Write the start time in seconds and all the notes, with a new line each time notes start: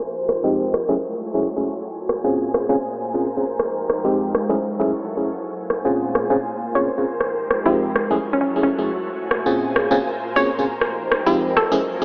Already playing: F3 D#4 G4 A#4 C5
0.29 cross-stick
0.44 F2 G#3 C4 D#4 G4
0.74 F#3 E4 A4 C#5, cross-stick
0.89 F#2 A3 C#4 E4 G#4
1.27 G#5
1.34 F#2 A3 C#4 E4 G#4
1.56 F#2 A3 C#4 E4 G#4
1.86 A#2 F4 G#4 C5
2.09 cross-stick
2.16 A#4
2.24 A#2 C4 C#4 F4 G#4
2.54 cross-stick
2.69 A#2 C4 C#4 F4 G#4
3.14 A#2 C4 C#4 F4 G#4
3.37 A#2 C4 C#4 F4 G#4
3.44 F3 G#3 D#4 G4
3.59 cross-stick
3.90 cross-stick
4.04 F2 G#3 C4 D#4 G4
4.34 F#3 E4 A4 C#5, cross-stick
4.49 F#2 A3 C#4 E4 G#4
4.79 F#2 A3 C#4 E4 G#4
4.87 G#5
5.17 F#2 A3 C#4 E4 G#4
5.47 A#2 F4 C5
5.70 cross-stick
5.85 A#2 C4 C#4 F4 G#4 A#4 C5
6.15 cross-stick
6.30 A#2 C4 C#4 F4 G#4
6.75 A#2 C4 C#4 F4 G#4 C#5
6.98 A#2 C4 C#4 F4 G#4
7.05 F3 D#4 G4
7.21 cross-stick
7.51 cross-stick
7.65 F2 G#3 C4 D#4 F4 G4
7.95 F#3 E4 A4 C#5, cross-stick
8.11 F#2 A3 C#4 E4 G#4
8.33 C#4
8.41 C#4
8.48 G#5
8.56 F#2 A3 C#4 E4 G#4
8.63 C#4
8.78 F#2 A3 C#4 E4 G#4
9.08 A#2 F4 C5
9.19 A#4
9.31 cross-stick
9.46 A#2 C4 C#4 F4 G#4
9.76 cross-stick
9.91 A#2 C4 C#4 F4 G#4
10.36 A#2 C4 C#4 F4 G#4 C#5
10.59 A#2 C4 C#4 F4 G#4
10.66 F3 D#4 G4
10.81 cross-stick
11.12 cross-stick
11.26 F2 G#3 C4 D#4 F4 G4
11.56 F#3 E4 A4 C#5 G#5, cross-stick
11.72 F#2 A3 C#4 E4 G#4
11.79 swell